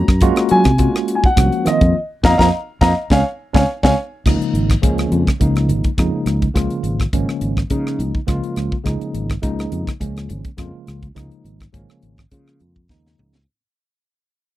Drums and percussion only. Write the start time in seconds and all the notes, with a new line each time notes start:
0.08 kick, cross-stick
0.21 kick, closed hi-hat
0.36 cross-stick, closed hi-hat
0.49 closed hi-hat
0.64 kick, cross-stick, closed hi-hat
0.78 kick, closed hi-hat
0.96 cross-stick
1.08 closed hi-hat
1.24 kick
1.37 kick, cross-stick, closed hi-hat
1.52 closed hi-hat
1.66 cross-stick, closed hi-hat
1.81 kick, closed hi-hat
2.24 kick, snare
2.39 kick, snare
2.81 kick, snare
3.10 kick, snare
3.54 kick, snare
3.83 kick, snare
4.26 kick, cross-stick, crash
4.42 closed hi-hat
4.55 closed hi-hat
4.70 kick, cross-stick, closed hi-hat
4.83 kick, closed hi-hat
4.98 cross-stick, closed hi-hat
5.12 closed hi-hat
5.27 kick, cross-stick, closed hi-hat
5.41 kick, closed hi-hat
5.56 cross-stick, closed hi-hat
5.69 closed hi-hat
5.84 kick, closed hi-hat
5.98 kick, cross-stick, closed hi-hat
6.26 cross-stick, closed hi-hat
6.42 kick, closed hi-hat
6.56 kick, cross-stick, closed hi-hat
6.70 closed hi-hat
6.84 closed hi-hat
7.00 kick, cross-stick, closed hi-hat
7.13 kick, closed hi-hat
7.29 cross-stick
7.41 closed hi-hat
7.57 kick, cross-stick
7.70 kick, closed hi-hat
7.87 cross-stick
8.00 closed hi-hat
8.15 kick
8.28 kick, cross-stick, closed hi-hat
8.44 closed hi-hat
8.56 cross-stick, closed hi-hat
8.72 kick
8.86 kick, cross-stick, closed hi-hat
9.01 closed hi-hat
9.15 closed hi-hat
9.30 kick, cross-stick, closed hi-hat
9.43 kick, closed hi-hat
9.59 cross-stick, closed hi-hat
9.72 closed hi-hat
9.87 kick, cross-stick, closed hi-hat
10.01 kick, closed hi-hat
10.17 cross-stick, closed hi-hat
10.30 closed hi-hat
10.44 kick, closed hi-hat
10.58 kick, cross-stick, closed hi-hat
10.87 cross-stick, closed hi-hat
11.02 kick, closed hi-hat
11.16 kick, cross-stick, closed hi-hat
11.31 closed hi-hat
11.46 closed hi-hat
11.60 kick, cross-stick, closed hi-hat
11.74 kick, closed hi-hat
11.90 cross-stick
12.03 closed hi-hat
12.18 kick, cross-stick
12.31 kick, closed hi-hat
12.48 cross-stick
12.60 closed hi-hat
12.76 kick
12.89 kick, snare
13.07 snare
13.19 mid tom
13.35 snare